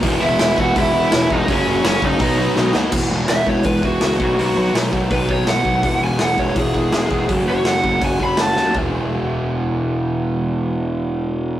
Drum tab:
CC |--------|--------|x-------|--------|
HH |o-o-o-o-|o-o-o---|--o-o-o-|o-o-o-o-|
SD |--o---o-|--o---oo|--o---o-|--o---o-|
FT |--------|--------|--------|--------|
BD |o--oo--o|o--oo---|o--ooo-o|---ooo-o|

CC |--------|--------|--------|--------|
HH |o-o-o-o-|o-o-o-o-|--------|--------|
SD |--o---o-|--o---oo|--------|--------|
FT |--------|--------|o-------|--------|
BD |o--ooo-o|o--ooo--|o-------|--------|